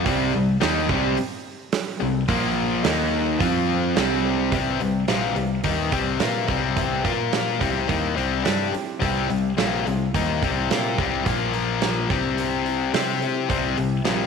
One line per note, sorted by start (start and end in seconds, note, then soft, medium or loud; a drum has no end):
0.05 0.32 C2 medium
0.05 0.32 C3 medium
0.05 0.33 G3 medium
0.05 0.33 C4 loud
0.05 kick loud
0.05 open hi-hat medium
0.33 0.60 C2 medium
0.33 0.56 C3 medium
0.33 0.56 G3 medium
0.60 0.88 D#2 medium
0.60 0.88 D#3 medium
0.60 0.88 A#3 medium
0.60 0.88 D#4 loud
0.60 snare loud
0.60 open hi-hat medium
0.89 1.15 C2 medium
0.89 1.16 C3 medium
0.89 1.17 G3 medium
0.89 1.17 C4 medium
0.89 kick medium
1.17 open hi-hat medium
1.72 snare loud
1.72 open hi-hat medium
2.00 2.28 C2 medium
2.00 2.23 C3 medium
2.00 2.23 G3 medium
2.28 2.81 A#1 medium
2.28 2.83 A#2 medium
2.28 2.84 F3 loud
2.28 2.83 A#3 loud
2.28 kick medium
2.28 open hi-hat medium
2.84 3.37 D#2 medium
2.84 3.39 D#3 medium
2.84 3.40 A#3 medium
2.84 3.40 D#4 medium
2.84 snare loud
2.84 open hi-hat medium
3.39 3.93 F2 medium
3.39 3.95 F3 medium
3.39 3.96 C4 medium
3.39 3.96 F4 loud
3.39 kick loud
3.39 open hi-hat medium
3.96 4.49 C2 medium
3.96 4.51 C3 medium
3.96 4.51 G3 medium
3.96 4.52 C4 loud
3.96 snare loud
3.96 open hi-hat medium
4.52 4.79 C2 medium
4.52 4.79 C3 medium
4.52 4.81 C3 medium
4.52 4.81 E3 medium
4.52 4.79 G3 medium
4.52 4.81 G3 medium
4.52 4.80 C4 medium
4.52 4.81 C4 medium
4.52 4.79 G4 medium
4.52 kick medium
4.52 open hi-hat medium
4.80 5.07 C2 medium
4.80 5.03 C3 soft
4.80 5.03 G3 medium
4.80 5.09 G3 soft
4.80 5.09 C4 soft
4.80 5.08 G4 soft
4.80 open hi-hat soft
5.08 5.35 A#1 medium
5.08 5.35 A#2 medium
5.08 5.37 C3 medium
5.08 5.37 E3 medium
5.08 5.35 F3 medium
5.08 5.38 G3 medium
5.08 5.36 A#3 medium
5.08 5.37 C4 medium
5.08 5.36 G4 medium
5.08 snare loud
5.08 open hi-hat medium
5.36 5.63 C2 medium
5.36 5.59 C3 soft
5.36 5.59 G3 medium
5.36 5.66 C4 soft
5.36 5.65 G4 soft
5.36 open hi-hat soft
5.40 5.65 G3 soft
5.64 5.91 D#2 medium
5.64 5.92 D#3 medium
5.64 5.93 E3 medium
5.64 5.94 G3 medium
5.64 5.92 A#3 medium
5.64 5.93 C4 medium
5.64 5.92 D#4 medium
5.64 kick medium
5.64 open hi-hat medium
5.68 5.91 G4 medium
5.92 6.19 C2 medium
5.92 6.20 C3 medium
5.92 6.20 G3 medium
5.92 6.20 G3 soft
5.92 6.20 C4 medium
5.92 6.21 C4 soft
5.92 6.21 G4 soft
5.92 kick medium
5.92 open hi-hat soft
6.20 6.47 A#2 medium
6.20 6.49 C3 medium
6.20 6.49 E3 medium
6.20 6.49 G3 medium
6.20 6.48 A#3 medium
6.20 6.49 C4 medium
6.20 6.48 F4 medium
6.20 6.48 G4 medium
6.20 6.49 A#4 medium
6.20 snare loud
6.20 open hi-hat medium
6.48 7.01 C2 medium
6.48 7.04 C3 medium
6.48 7.04 G3 medium
6.48 7.04 C4 medium
6.48 6.77 C4 medium
6.48 6.77 G4 medium
6.48 kick medium
6.48 open hi-hat soft
6.52 6.76 G3 soft
6.77 7.05 C3 medium
6.77 7.05 E3 medium
6.77 7.06 G3 medium
6.77 7.04 C4 medium
6.77 7.06 G4 medium
6.77 kick medium
6.77 open hi-hat medium
7.04 7.58 A#2 medium
7.04 7.60 A#3 medium
7.04 7.33 A#3 soft
7.04 7.33 F4 soft
7.04 7.60 F4 medium
7.04 7.61 A#4 medium
7.04 kick medium
7.04 open hi-hat soft
7.08 7.32 F3 soft
7.32 7.61 A#2 medium
7.32 7.62 F3 medium
7.32 7.62 A#3 medium
7.32 7.61 F4 medium
7.32 snare loud
7.32 open hi-hat medium
7.60 7.88 C2 medium
7.60 7.88 C3 medium
7.60 7.88 G3 medium
7.60 7.88 C4 medium
7.60 7.88 C4 soft
7.60 7.89 E4 soft
7.60 7.89 G4 soft
7.60 kick medium
7.60 open hi-hat soft
7.88 8.16 D#2 medium
7.88 8.16 D#3 medium
7.88 8.17 G3 medium
7.88 8.16 A#3 medium
7.88 8.18 C4 medium
7.88 8.16 D#4 medium
7.88 8.17 E4 medium
7.88 8.15 G4 medium
7.88 kick medium
7.88 open hi-hat medium
8.16 8.44 C2 medium
8.16 8.44 C3 medium
8.16 8.43 G3 medium
8.16 8.44 C4 medium
8.16 8.44 C4 soft
8.16 8.45 E4 soft
8.16 8.45 G4 soft
8.16 open hi-hat soft
8.44 8.72 G2 medium
8.44 8.73 C3 medium
8.44 8.72 G3 medium
8.44 8.74 G3 medium
8.44 8.74 C4 medium
8.44 8.72 D4 medium
8.44 8.72 E4 medium
8.44 8.73 G4 medium
8.44 8.70 G4 medium
8.44 snare loud
8.44 open hi-hat medium
8.72 9.02 C4 soft
8.72 9.02 E4 soft
8.72 9.01 G4 medium
8.72 muted distorted electric guitar stroke medium
8.72 muted picked electric bass stroke soft
8.72 open hi-hat soft
9.00 9.28 C2 medium
9.00 9.27 C3 medium
9.00 9.30 C3 medium
9.00 9.28 G3 medium
9.00 9.30 G3 medium
9.00 9.29 C4 medium
9.00 9.31 C4 medium
9.00 9.30 E4 medium
9.00 9.28 G4 medium
9.00 kick medium
9.00 open hi-hat medium
9.28 9.56 C2 medium
9.28 9.52 C3 medium
9.28 9.52 G3 medium
9.28 9.58 E4 soft
9.28 9.58 G4 medium
9.28 open hi-hat soft
9.33 9.58 C4 soft
9.57 9.84 A#1 medium
9.57 9.85 A#2 medium
9.57 9.86 C3 medium
9.57 9.85 F3 loud
9.57 9.86 G3 medium
9.57 9.86 A#3 medium
9.57 9.87 C4 medium
9.57 9.86 E4 medium
9.57 9.85 G4 medium
9.57 snare medium
9.57 open hi-hat medium
9.86 10.13 C2 medium
9.86 10.09 C3 medium
9.86 10.09 G3 medium
9.86 10.15 C4 soft
9.86 10.15 E4 soft
9.86 10.14 G4 soft
9.86 open hi-hat soft
10.14 10.41 D#2 medium
10.14 10.42 D#3 medium
10.14 10.42 G3 medium
10.14 10.42 A#3 medium
10.14 10.43 C4 medium
10.14 10.42 D#4 medium
10.14 10.43 E4 medium
10.14 10.41 G4 medium
10.14 kick medium
10.14 open hi-hat medium
10.42 10.69 C2 medium
10.42 10.70 C3 medium
10.42 10.70 G3 medium
10.42 10.70 C4 medium
10.42 10.71 C4 soft
10.42 10.71 E4 medium
10.42 10.70 G4 medium
10.42 kick medium
10.42 open hi-hat soft
10.71 10.97 A#2 medium
10.71 10.99 C3 medium
10.71 10.99 G3 medium
10.71 10.98 A#3 medium
10.71 10.99 C4 medium
10.71 11.00 E4 medium
10.71 10.98 F4 medium
10.71 10.98 G4 medium
10.71 10.98 A#4 medium
10.71 snare medium
10.71 open hi-hat medium
10.98 11.24 C2 medium
10.98 11.26 C3 medium
10.98 11.26 G3 medium
10.98 11.27 C4 medium
10.98 11.28 C4 soft
10.98 11.28 E4 soft
10.98 11.27 G4 medium
10.98 kick medium
10.98 open hi-hat soft
11.26 12.06 A#1 medium
11.26 12.09 A#2 medium
11.26 11.55 A#2 medium
11.26 12.09 F3 medium
11.26 11.55 F3 medium
11.26 12.10 A#3 medium
11.26 11.54 A#3 medium
11.26 11.53 F4 medium
11.26 kick medium
11.26 open hi-hat medium
11.54 11.83 F3 soft
11.54 11.83 A#3 soft
11.54 11.82 F4 medium
11.54 open hi-hat soft
11.82 12.10 A#2 medium
11.82 12.11 F3 medium
11.82 12.11 A#3 medium
11.82 12.12 F4 medium
11.82 snare loud
11.82 open hi-hat medium
12.10 12.90 C2 medium
12.10 12.93 C3 medium
12.10 12.93 G3 medium
12.10 12.93 C4 medium
12.10 12.39 E4 soft
12.10 12.39 G4 soft
12.10 kick medium
12.10 open hi-hat soft
12.14 12.38 C4 soft
12.37 12.66 G3 medium
12.37 12.67 C4 soft
12.37 12.67 E4 medium
12.37 open hi-hat medium
12.41 12.65 G4 medium
12.66 12.93 C4 soft
12.66 12.94 E4 soft
12.66 open hi-hat soft
12.93 13.22 C3 medium
12.93 13.46 C3 medium
12.93 13.22 G3 medium
12.93 13.49 C4 medium
12.93 13.22 C4 medium
12.93 13.22 E4 medium
12.93 13.49 G4 medium
12.93 13.20 G4 medium
12.93 13.49 C5 medium
12.93 snare medium
12.93 open hi-hat medium
13.21 13.49 C4 soft
13.21 13.49 E4 soft
13.21 13.49 G4 soft
13.21 open hi-hat soft
13.49 13.76 C2 medium
13.49 13.77 C3 medium
13.49 13.76 C3 medium
13.49 13.78 G3 medium
13.49 13.76 G3 medium
13.49 13.78 C4 medium
13.49 13.77 C4 loud
13.49 13.77 E4 medium
13.49 13.76 G4 medium
13.49 kick medium
13.49 open hi-hat medium
13.77 14.04 C2 medium
13.77 14.00 C3 medium
13.77 14.00 G3 medium
13.77 14.06 C4 soft
13.77 14.06 E4 soft
13.77 14.05 G4 soft
13.77 open hi-hat soft
14.05 14.27 A#1 medium
14.05 14.27 A#2 medium
14.05 14.27 C3 medium
14.05 14.27 F3 medium
14.05 14.27 G3 medium
14.05 14.27 A#3 medium
14.05 14.27 C4 medium
14.05 14.27 E4 medium
14.05 14.27 G4 medium
14.05 snare medium
14.05 open hi-hat medium